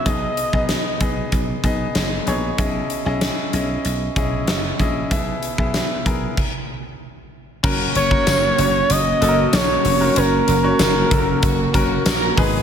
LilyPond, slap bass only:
\new Staff \with { instrumentName = "Slap bass" } { \clef bass \time 4/4 \key fis \mixolydian \tempo 4 = 95 b,,8 r16 b,,8 r16 b,,8 b,,8 b,,8 fis,,8 ais,,8 | b,,8 r16 b,,8 r16 b,,8 b,,8 b,,8 fis,,8 ais,,8 | b,,8 r16 b,,8 r16 b,,8 r2 | fis,,8 fis,,8 fis,,8 fis,,8 fis,,8 fis,,8 ais,,8 eis,,8 |
fis,,8 fis,,8 fis,,8 fis,,8 fis,,8 fis,,8 ais,,8 gis,,8 | }